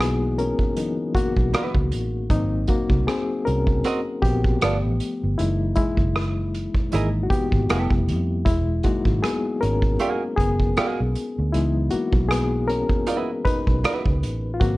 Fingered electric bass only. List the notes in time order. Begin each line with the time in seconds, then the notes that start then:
Already playing: B1
1.16 muted fingered electric bass stroke
1.37 B1
1.75 C#2
1.93 A1
2.31 G#1
2.90 C2
3.48 C2
4.23 A#1
4.63 G1
4.85 A1
5.24 G1
5.40 F#1
5.98 F#1
6.94 G#1
7.53 G#1
7.71 F1
7.91 F1
8.09 F2
8.47 E1
9.06 G#1
9.63 G#1
10.39 F#1
10.78 muted fingered electric bass stroke
11.00 B1
11.38 D2
11.55 C#2
12.14 B1
13.46 muted fingered electric bass stroke
13.68 B1
14.07 C#2
14.25 A1
14.62 G#1